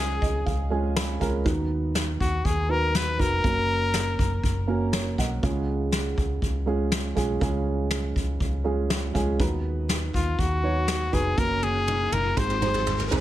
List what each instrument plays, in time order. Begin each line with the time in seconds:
Already playing: fingered electric bass C#2, upright piano C#3 G#3 C#4 F4 G#4, trumpet G#4
0.22 fingered electric bass C#2, upright piano D#5, kick
0.46 fingered electric bass C#2, upright piano F5, kick
0.70 upright piano G#3 C#4 F4 G#4 G#5
0.96 upright piano B5, snare
1.20 fingered electric bass C#2, upright piano G#3 C#4 F4 A#4 A#5, kick, snare
1.45 fingered electric bass D#2, upright piano D#3 B3 D#4 F#4 B4, kick
1.95 snare
2.20 fingered electric bass D#2, trumpet F#4, kick
2.45 fingered electric bass D#2, trumpet G#4, kick
2.69 upright piano B3 D#4 F#4 B4, trumpet A#4
2.95 trumpet B4, snare
3.18 fingered electric bass F1, upright piano B3 D#4 F#4 B4, trumpet A#4, kick
3.44 fingered electric bass F#1, upright piano A#3 C#4 F#4 A#4, kick
3.94 snare
4.19 fingered electric bass F#1, kick
4.43 fingered electric bass F#1, kick
4.67 upright piano A#3 C#4 F#4 A#4
4.93 upright piano A#4 C#5, snare
5.18 fingered electric bass B1, upright piano D#5 F#5, kick, snare
5.43 fingered electric bass C#2, upright piano C#3 G#3 C#4 F4 G#4, kick
5.92 snare
6.18 fingered electric bass C#2, kick
6.42 fingered electric bass C#2, kick
6.66 upright piano G#3 C#4 F4 G#4
6.92 snare
7.15 fingered electric bass B1, upright piano G#3 C#4 F4 G#4, kick, snare
7.41 fingered electric bass C#2, upright piano C#3 G#3 C#4 F4 G#4, kick
7.91 snare
8.16 fingered electric bass C#2, kick
8.40 fingered electric bass C#2, kick
8.64 upright piano G#3 C#4 F4 G#4
8.90 snare
9.14 fingered electric bass C#2, upright piano G#3 C#4 F4 G#4, kick, snare
9.39 fingered electric bass D#2, upright piano D#3 B3 D#4 F#4 B4, kick, riser
9.89 snare
10.14 fingered electric bass D#2, trumpet F4, kick
10.39 fingered electric bass D#2, trumpet F#4, kick
10.63 upright piano B3 D#4 F#4 C#5
10.88 snare
11.12 fingered electric bass F1, upright piano B3 D#4 F#4 B4, trumpet G#4, kick, snare
11.37 fingered electric bass F#1, upright piano A#3 C#4 F#4 A#4, trumpet A#4, kick, high tom
11.63 trumpet G#4, high tom
11.88 mid tom
12.12 fingered electric bass F#1, trumpet A#4, mid tom
12.37 fingered electric bass G#1, upright piano G#2 C4 D#4 G#4 C5, trumpet C5, kick, mid tom
12.50 mid tom
12.61 upright piano C4 D#4 G#4 C5, mid tom
12.74 mid tom
12.87 floor tom
12.99 floor tom
13.11 fingered electric bass C2, upright piano C4 D#4 G#4 C5, floor tom